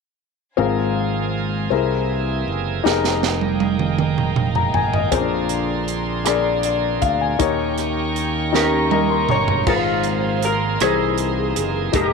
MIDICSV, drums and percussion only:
0, 0, Header, 1, 2, 480
1, 0, Start_track
1, 0, Key_signature, -4, "major"
1, 0, Tempo, 757576
1, 366, Time_signature, 6, 3, 24, 8
1, 7686, End_track
2, 0, Start_track
2, 0, Title_t, "Drums"
2, 1812, Note_on_c, 9, 38, 42
2, 1876, Note_off_c, 9, 38, 0
2, 1929, Note_on_c, 9, 38, 35
2, 1992, Note_off_c, 9, 38, 0
2, 2048, Note_on_c, 9, 38, 47
2, 2111, Note_off_c, 9, 38, 0
2, 2163, Note_on_c, 9, 48, 41
2, 2226, Note_off_c, 9, 48, 0
2, 2283, Note_on_c, 9, 48, 51
2, 2346, Note_off_c, 9, 48, 0
2, 2404, Note_on_c, 9, 47, 49
2, 2467, Note_off_c, 9, 47, 0
2, 2525, Note_on_c, 9, 47, 56
2, 2588, Note_off_c, 9, 47, 0
2, 2648, Note_on_c, 9, 45, 51
2, 2711, Note_off_c, 9, 45, 0
2, 2764, Note_on_c, 9, 45, 67
2, 2827, Note_off_c, 9, 45, 0
2, 2885, Note_on_c, 9, 43, 57
2, 2948, Note_off_c, 9, 43, 0
2, 3003, Note_on_c, 9, 43, 63
2, 3067, Note_off_c, 9, 43, 0
2, 3127, Note_on_c, 9, 43, 63
2, 3190, Note_off_c, 9, 43, 0
2, 3243, Note_on_c, 9, 42, 66
2, 3245, Note_on_c, 9, 36, 84
2, 3307, Note_off_c, 9, 42, 0
2, 3309, Note_off_c, 9, 36, 0
2, 3480, Note_on_c, 9, 42, 41
2, 3544, Note_off_c, 9, 42, 0
2, 3725, Note_on_c, 9, 42, 36
2, 3788, Note_off_c, 9, 42, 0
2, 3964, Note_on_c, 9, 42, 67
2, 3972, Note_on_c, 9, 37, 75
2, 4027, Note_off_c, 9, 42, 0
2, 4035, Note_off_c, 9, 37, 0
2, 4202, Note_on_c, 9, 42, 48
2, 4266, Note_off_c, 9, 42, 0
2, 4447, Note_on_c, 9, 42, 34
2, 4449, Note_on_c, 9, 36, 61
2, 4510, Note_off_c, 9, 42, 0
2, 4512, Note_off_c, 9, 36, 0
2, 4686, Note_on_c, 9, 42, 70
2, 4687, Note_on_c, 9, 36, 89
2, 4749, Note_off_c, 9, 42, 0
2, 4750, Note_off_c, 9, 36, 0
2, 4927, Note_on_c, 9, 42, 43
2, 4935, Note_on_c, 9, 37, 26
2, 4990, Note_off_c, 9, 42, 0
2, 4999, Note_off_c, 9, 37, 0
2, 5171, Note_on_c, 9, 42, 38
2, 5234, Note_off_c, 9, 42, 0
2, 5415, Note_on_c, 9, 38, 40
2, 5478, Note_off_c, 9, 38, 0
2, 5647, Note_on_c, 9, 48, 54
2, 5710, Note_off_c, 9, 48, 0
2, 5884, Note_on_c, 9, 45, 60
2, 5947, Note_off_c, 9, 45, 0
2, 6006, Note_on_c, 9, 43, 62
2, 6069, Note_off_c, 9, 43, 0
2, 6124, Note_on_c, 9, 49, 66
2, 6126, Note_on_c, 9, 36, 86
2, 6188, Note_off_c, 9, 49, 0
2, 6189, Note_off_c, 9, 36, 0
2, 6359, Note_on_c, 9, 42, 39
2, 6422, Note_off_c, 9, 42, 0
2, 6605, Note_on_c, 9, 42, 57
2, 6669, Note_off_c, 9, 42, 0
2, 6846, Note_on_c, 9, 42, 65
2, 6853, Note_on_c, 9, 37, 82
2, 6909, Note_off_c, 9, 42, 0
2, 6917, Note_off_c, 9, 37, 0
2, 7081, Note_on_c, 9, 42, 48
2, 7145, Note_off_c, 9, 42, 0
2, 7326, Note_on_c, 9, 42, 50
2, 7390, Note_off_c, 9, 42, 0
2, 7562, Note_on_c, 9, 42, 66
2, 7564, Note_on_c, 9, 36, 92
2, 7625, Note_off_c, 9, 42, 0
2, 7627, Note_off_c, 9, 36, 0
2, 7686, End_track
0, 0, End_of_file